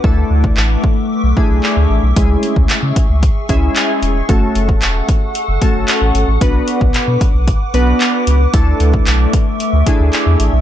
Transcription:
0.04 0.24 D2 loud
0.04 2.14 A3 medium
0.04 0.93 A3 medium
0.04 0.93 D4 medium
0.04 0.93 E4 medium
0.04 0.93 A4 medium
0.04 4.25 E5 medium
0.04 2.14 D6 medium
0.04 kick loud
0.30 0.50 D2 medium
0.44 kick medium
0.57 0.77 A1 loud
0.57 clap loud
0.84 kick loud
1.24 1.33 B1 medium
1.37 2.04 A3 medium
1.37 2.04 D4 medium
1.37 2.04 E4 medium
1.37 2.04 G#4 medium
1.37 kick medium
1.50 1.60 B1 loud
1.63 clap loud
1.77 1.86 D2 medium
1.90 2.00 A1 medium
2.03 2.13 B1 medium
2.16 2.36 C#2 loud
2.16 3.06 G#3 medium
2.16 3.06 C#4 medium
2.16 3.06 E4 medium
2.16 4.27 G#4 medium
2.16 3.06 G#4 medium
2.16 6.37 C#6 medium
2.16 kick loud
2.16 closed hi-hat loud
2.43 closed hi-hat medium
2.56 2.66 C#2 medium
2.56 kick medium
2.69 2.75 C#3 soft
2.69 clap loud
2.69 closed hi-hat medium
2.83 2.93 C#3 medium
2.96 kick loud
2.96 closed hi-hat medium
3.09 3.29 C#2 medium
3.23 kick medium
3.23 closed hi-hat medium
3.49 3.69 C#2 medium
3.49 4.16 G#3 medium
3.49 4.16 C#4 medium
3.49 4.16 E4 medium
3.49 4.16 G#4 medium
3.49 3.74 E5 medium
3.49 kick medium
3.49 closed hi-hat medium
3.76 4.25 G#5 medium
3.76 clap loud
3.76 closed hi-hat medium
4.02 4.22 E1 medium
4.02 closed hi-hat medium
4.29 4.48 F#1 loud
4.29 5.18 A3 medium
4.29 5.18 C#4 medium
4.29 5.18 F#4 medium
4.29 5.18 A4 medium
4.29 6.39 A4 medium
4.29 8.50 F#5 medium
4.29 kick loud
4.29 closed hi-hat loud
4.55 4.75 F#1 loud
4.55 closed hi-hat medium
4.69 kick medium
4.82 5.02 E1 loud
4.82 clap loud
4.82 closed hi-hat medium
5.09 kick loud
5.09 closed hi-hat medium
5.35 closed hi-hat medium
5.48 5.58 F#1 medium
5.61 6.28 A3 medium
5.61 6.28 C#4 medium
5.61 6.29 F#4 medium
5.61 6.29 A4 medium
5.61 kick medium
5.61 closed hi-hat medium
5.75 5.85 F#1 medium
5.88 clap loud
5.88 closed hi-hat medium
6.01 6.11 A1 medium
6.15 6.24 G#1 medium
6.15 closed hi-hat medium
6.28 6.38 A1 medium
6.41 6.61 B1 loud
6.41 7.30 B3 medium
6.41 7.30 D4 medium
6.41 7.30 F#4 medium
6.41 8.51 B4 medium
6.41 7.31 B4 loud
6.41 10.61 D6 medium
6.41 kick loud
6.41 closed hi-hat loud
6.68 closed hi-hat medium
6.81 6.91 B1 medium
6.81 kick medium
6.94 7.00 B2 medium
6.94 clap loud
6.94 closed hi-hat medium
7.08 7.17 B2 medium
7.21 kick loud
7.21 closed hi-hat medium
7.34 7.54 B1 medium
7.48 kick medium
7.48 closed hi-hat medium
7.74 7.93 B1 medium
7.74 8.41 B3 medium
7.74 8.41 D4 medium
7.74 8.41 F#4 medium
7.74 8.41 B4 loud
7.74 closed hi-hat medium
8.01 clap loud
8.01 closed hi-hat medium
8.27 8.47 C#2 medium
8.27 closed hi-hat medium
8.53 8.73 D2 loud
8.53 10.61 A3 medium
8.53 9.43 A3 medium
8.53 9.43 D4 medium
8.53 9.43 E4 medium
8.53 9.43 A4 loud
8.53 10.61 E5 medium
8.53 kick loud
8.53 closed hi-hat medium
8.80 9.00 D2 loud
8.80 closed hi-hat medium
8.94 kick medium
9.07 9.26 B1 loud
9.07 clap loud
9.07 closed hi-hat medium
9.33 kick loud
9.33 closed hi-hat medium
9.60 closed hi-hat medium
9.73 9.83 D2 medium
9.86 10.53 A3 medium
9.86 10.53 D4 medium
9.86 10.53 E4 medium
9.86 10.54 G#4 medium
9.86 kick medium
9.86 closed hi-hat medium
10.00 10.10 D2 loud
10.13 clap loud
10.13 closed hi-hat medium
10.26 10.36 E2 medium
10.40 10.49 A1 medium
10.40 closed hi-hat medium
10.53 10.61 B1 medium

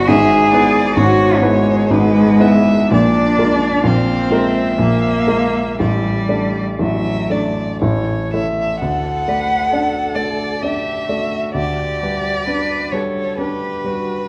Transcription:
0.06 0.51 G#1 medium
0.06 0.51 G#2 medium
0.06 0.95 G#4 loud
0.06 0.50 E5 medium
0.52 0.93 B3 medium
0.52 0.94 E4 medium
0.52 0.94 B4 medium
0.52 0.99 D5 medium
0.96 1.41 G#1 medium
0.96 1.41 G#2 medium
0.96 1.43 F#4 loud
0.96 1.92 C#5 medium
1.42 2.89 G#3 loud
1.42 1.85 B3 medium
1.42 1.85 E4 medium
1.42 1.85 B4 medium
1.91 2.38 G#1 medium
1.91 2.38 G#2 medium
1.91 2.42 B4 medium
2.40 2.87 B3 medium
2.40 2.87 E4 medium
2.40 2.87 B4 medium
2.40 2.91 E5 medium
2.90 3.38 A#1 medium
2.90 3.37 A#2 medium
2.90 3.87 D4 loud
2.90 3.85 D5 medium
3.38 3.81 G#3 medium
3.38 3.81 F4 medium
3.38 3.81 A#4 medium
3.84 4.30 A#1 medium
3.84 4.30 A#2 medium
3.84 4.81 C4 loud
3.84 4.34 F5 medium
4.31 4.76 G#3 medium
4.31 4.76 F4 medium
4.31 4.76 A#4 medium
4.31 5.79 E5 medium
4.78 5.27 A#1 medium
4.78 5.27 A#2 medium
4.78 5.77 A#3 loud
5.27 5.74 G#3 medium
5.27 5.74 F4 medium
5.27 5.74 A#4 medium
5.78 6.29 A1 medium
5.78 6.29 A2 medium
5.78 6.81 G3 loud
5.78 6.69 D5 medium
6.29 6.76 A3 medium
6.29 6.76 D4 soft
6.29 6.76 D5 soft
6.79 7.29 A1 medium
6.79 7.29 A2 medium
6.79 7.81 F#3 medium
6.79 7.32 E5 medium
7.30 7.77 A3 soft
7.30 7.77 D4 soft
7.30 7.81 D5 medium
7.30 7.78 D5 medium
7.82 8.31 A1 medium
7.82 8.31 A2 medium
7.82 8.31 C#5 medium
8.33 8.78 A3 medium
8.33 8.78 E4 soft
8.33 8.78 C#5 medium
8.33 8.79 E5 medium
8.80 11.52 D2 medium
8.80 9.29 A4 medium
8.80 10.17 F#5 medium
9.28 9.68 A3 soft
9.28 9.70 B4 medium
9.28 9.68 D5 soft
9.70 10.13 D4 medium
9.70 10.59 A4 medium
9.70 10.13 D5 medium
10.16 10.58 A3 soft
10.16 10.64 D5 medium
10.16 10.58 D5 medium
10.62 11.05 D4 soft
10.62 11.09 G4 medium
10.62 11.06 D5 soft
10.62 11.54 E5 medium
11.08 11.51 A3 soft
11.08 11.56 F#4 medium
11.08 11.51 D5 soft
11.54 14.28 D2 medium
11.54 12.47 G4 medium
11.54 12.94 D5 medium
12.03 12.43 G3 soft
12.03 12.43 B4 soft
12.45 12.88 D4 soft
12.45 12.95 B4 medium
12.45 12.88 B4 soft
12.92 13.34 G3 soft
12.92 13.39 A4 medium
12.92 13.34 B4 soft
12.92 13.38 C#5 medium
13.37 13.82 D4 soft
13.37 13.88 G4 medium
13.37 14.28 B4 medium
13.37 13.83 B4 soft
13.84 14.28 G3 soft
13.84 14.28 F#4 medium
13.84 14.28 B4 soft

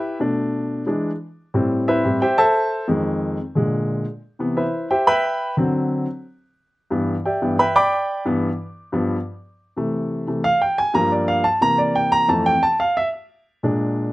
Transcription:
0.00 0.17 E4 medium
0.00 0.17 G4 medium
0.00 0.17 B4 medium
0.00 0.17 E5 medium
0.20 0.84 B2 medium
0.20 0.84 A3 soft
0.20 0.84 D4 medium
0.86 1.09 E3 medium
0.86 1.09 G#3 medium
0.86 1.10 D4 medium
1.54 2.02 A2 medium
1.54 2.02 G3 medium
1.54 2.02 C4 medium
1.88 2.19 E4 medium
1.88 2.20 B4 medium
1.88 2.19 C5 medium
1.88 2.19 E5 medium
2.05 2.20 A2 soft
2.05 2.20 G3 soft
2.05 2.20 C4 medium
2.22 2.38 G4 medium
2.22 2.37 C5 medium
2.22 2.37 E5 medium
2.22 2.38 G5 medium
2.38 2.85 A4 medium
2.38 2.85 C5 medium
2.38 2.85 E5 medium
2.38 2.85 A5 loud
2.88 3.36 F2 medium
2.88 3.36 D#3 medium
2.88 3.37 G#3 medium
3.55 4.03 A#2 medium
3.55 4.04 D3 soft
3.55 4.04 G#3 medium
4.39 4.62 C3 soft
4.39 4.62 E3 medium
4.39 4.62 B3 medium
4.57 4.88 E4 soft
4.57 4.88 B4 medium
4.57 4.88 C5 soft
4.57 4.88 E5 medium
4.91 5.07 G4 medium
4.91 5.07 C5 medium
4.91 5.06 E5 medium
4.91 5.06 G5 medium
5.07 5.54 B4 medium
5.07 5.54 E5 medium
5.07 5.54 G5 medium
5.07 5.54 B5 loud
5.57 6.05 D3 medium
5.57 6.05 F#3 medium
5.57 6.06 C4 medium
6.91 7.13 G2 medium
6.91 7.14 E3 medium
6.91 7.14 B3 medium
7.25 7.57 G4 soft
7.25 7.57 D5 soft
7.25 7.57 E5 soft
7.25 7.56 G5 medium
7.42 7.57 G2 medium
7.42 7.57 E3 medium
7.42 7.57 B3 medium
7.59 7.75 B4 medium
7.59 7.75 E5 medium
7.59 7.74 G5 medium
7.59 7.75 B5 medium
7.76 8.22 D5 medium
7.76 8.22 G5 medium
7.76 8.23 B5 medium
7.76 8.22 D6 loud
8.25 8.48 G2 medium
8.25 8.48 E3 medium
8.25 8.48 B3 medium
8.92 9.15 G2 medium
8.92 9.15 F3 medium
8.92 9.16 B3 medium
9.77 10.26 C3 soft
9.77 10.26 E3 soft
9.77 10.27 A3 medium
10.27 10.42 C3 soft
10.27 10.43 E3 soft
10.27 10.43 A3 medium
10.44 10.61 F5 loud
10.62 10.78 G5 medium
10.78 10.94 G#5 medium
10.94 11.42 G2 medium
10.94 11.42 F3 medium
10.94 11.43 A#3 medium
10.94 11.11 A#5 loud
11.12 11.28 D5 medium
11.28 11.45 F5 medium
11.44 11.61 A5 medium
11.61 12.25 C3 medium
11.61 12.26 E3 medium
11.61 12.26 A#3 medium
11.61 11.78 A#5 loud
11.78 11.95 D5 medium
11.95 12.12 G5 medium
12.12 12.29 A#5 loud
12.28 12.51 F2 medium
12.28 12.51 E3 medium
12.28 12.52 A3 medium
12.28 12.45 A5 medium
12.46 12.62 G5 loud
12.63 12.79 A5 loud
12.80 12.96 F5 medium
12.97 13.07 E5 medium
13.63 14.13 A#2 medium
13.63 14.13 G#3 medium
13.63 14.13 D4 medium

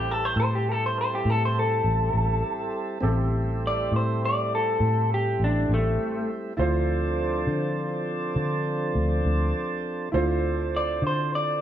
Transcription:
0.00 0.32 A1 medium
0.00 2.98 G3 medium
0.00 2.98 C4 soft
0.00 2.98 C4 medium
0.00 2.99 E4 medium
0.00 0.11 G4 medium
0.00 2.99 G4 soft
0.00 2.98 A4 medium
0.00 3.00 B4 medium
0.11 0.25 A4 medium
0.25 0.38 C5 medium
0.36 1.21 A2 medium
0.36 0.53 C5 medium
0.55 0.68 G4 medium
0.72 0.83 A4 medium
0.86 0.98 C5 medium
1.01 1.13 C5 medium
1.15 1.30 G4 medium
1.25 1.81 A2 medium
1.30 1.42 A4 medium
1.45 1.57 C5 medium
1.59 3.31 A4 medium
1.84 2.12 A1 medium
2.14 2.41 A1 medium
3.00 3.88 A1 medium
3.00 6.53 G3 medium
3.00 6.53 A3 medium
3.00 6.53 C4 soft
3.00 6.53 C4 medium
3.00 6.53 E4 medium
3.00 6.54 G4 soft
3.00 6.54 A4 medium
3.67 3.94 D5 medium
3.92 4.77 A2 medium
3.96 4.23 C5 medium
4.25 4.52 D5 medium
4.55 5.10 A4 medium
4.80 5.36 A2 medium
5.14 5.41 G4 medium
5.40 5.67 A1 medium
5.44 5.71 D4 medium
5.69 5.96 A1 medium
5.74 6.29 A3 medium
6.57 7.43 D2 medium
6.57 10.09 F3 medium
6.57 10.09 C4 medium
6.57 10.09 D4 medium
6.57 10.08 E4 soft
6.57 10.09 F4 soft
6.57 10.09 A4 medium
6.57 10.09 C5 medium
7.47 8.32 D3 medium
8.36 8.91 D3 medium
8.95 9.22 D2 medium
9.25 9.52 D2 medium
10.12 10.98 D2 medium
10.12 11.61 C4 medium
10.12 11.61 D4 medium
10.12 11.61 E4 soft
10.12 11.61 F4 soft
10.12 11.61 A4 medium
10.12 11.61 C5 medium
10.77 11.03 D5 medium
11.02 11.61 D3 medium
11.07 11.33 C5 medium
11.35 11.61 D5 medium

